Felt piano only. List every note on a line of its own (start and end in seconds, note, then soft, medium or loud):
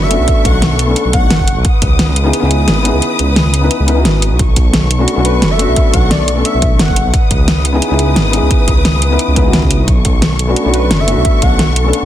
0.00 0.10 F#4 loud
0.08 0.84 A3 loud
0.08 0.85 B3 medium
0.08 0.86 C#4 medium
0.08 0.87 D4 medium
0.14 0.87 F#4 loud
0.85 1.45 A3 medium
0.85 1.45 B3 medium
0.85 1.46 C#4 medium
0.85 1.46 D4 medium
0.91 1.47 A4 medium
2.24 2.38 B3 medium
2.24 2.39 C#4 medium
2.24 2.40 D#4 medium
2.24 2.41 E4 medium
2.24 2.41 G#4 loud
2.40 2.81 B3 loud
2.40 2.82 C#4 medium
2.40 2.83 D#4 medium
2.44 2.84 E4 medium
2.44 2.84 G#4 loud
2.83 3.59 B3 loud
2.83 3.60 C#4 medium
2.83 3.60 D#4 medium
2.87 3.61 E4 medium
2.87 3.62 G#4 loud
3.61 3.85 B3 medium
3.61 3.85 C#4 medium
3.61 3.86 D#4 medium
3.61 3.87 E4 medium
3.61 3.87 B4 medium
3.86 3.92 B3 medium
3.86 3.94 C#4 medium
3.86 3.94 D#4 medium
3.86 3.95 E4 medium
3.86 3.95 B4 loud
3.94 4.37 B3 medium
3.94 4.38 C#4 medium
3.94 4.38 D#4 medium
3.98 4.39 E4 medium
3.98 4.40 F#4 loud
4.98 5.12 A3 medium
4.98 5.14 B3 medium
4.98 5.15 C#4 medium
4.98 5.15 D4 medium
4.98 5.15 F#4 loud
5.14 5.55 A3 loud
5.14 5.56 B3 medium
5.14 5.57 C#4 medium
5.18 5.58 D4 medium
5.18 5.59 F#4 loud
5.56 6.32 A3 loud
5.56 6.33 B3 medium
5.56 6.34 C#4 medium
5.60 6.35 D4 medium
5.60 6.36 F#4 loud
6.34 6.93 A3 medium
6.34 6.94 B3 medium
6.34 6.94 C#4 medium
6.38 6.95 D4 medium
6.38 6.96 A4 medium
7.72 7.87 B3 medium
7.72 7.88 C#4 medium
7.72 7.89 D#4 medium
7.72 7.89 E4 medium
7.72 7.90 G#4 loud
7.88 8.29 B3 loud
7.88 8.31 C#4 medium
7.88 8.32 D#4 medium
7.92 8.32 E4 medium
7.92 8.33 G#4 loud
8.31 9.07 B3 medium
8.31 9.08 C#4 medium
8.31 9.09 D#4 medium
8.35 9.10 E4 medium
8.35 9.10 G#4 loud
9.10 9.33 B3 medium
9.10 9.34 C#4 medium
9.10 9.35 D#4 medium
9.10 9.35 E4 medium
9.10 9.36 B4 medium
9.35 9.41 B3 medium
9.35 9.42 C#4 medium
9.35 9.43 D#4 medium
9.35 9.43 E4 medium
9.35 9.44 B4 medium
9.42 9.85 B3 medium
9.42 9.86 C#4 medium
9.42 9.87 D#4 medium
9.46 9.87 E4 medium
9.46 9.88 F#4 loud
10.47 10.61 A3 medium
10.47 10.63 B3 medium
10.47 10.63 C#4 medium
10.47 10.64 D4 medium
10.47 10.64 F#4 medium
10.63 11.04 A3 loud
10.63 11.05 B3 medium
10.63 11.06 C#4 medium
10.67 11.07 D4 medium
10.67 11.07 F#4 loud
11.05 11.81 A3 medium
11.05 11.82 B3 medium
11.05 11.83 C#4 medium
11.09 11.84 D4 medium
11.09 11.85 F#4 loud
11.83 12.05 A3 medium
11.83 12.05 B3 medium
11.83 12.05 C#4 medium
11.87 12.05 D4 medium
11.87 12.05 A4 medium